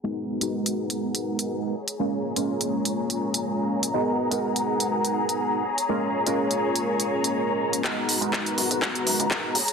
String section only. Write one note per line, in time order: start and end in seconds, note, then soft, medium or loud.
0.04 1.73 B3 medium
0.04 3.91 G#4 medium
0.04 1.73 F#5 medium
0.04 1.73 A#5 medium
1.75 3.92 C#5 medium
1.75 7.81 A#5 medium
3.94 5.64 B3 medium
3.94 7.81 G#4 medium
3.94 5.63 F#5 medium
5.65 7.82 C#5 medium
7.84 9.54 B3 medium
7.84 9.54 F#4 medium
7.84 9.73 A#5 medium
9.55 9.73 G#4 medium
9.55 9.73 C#5 medium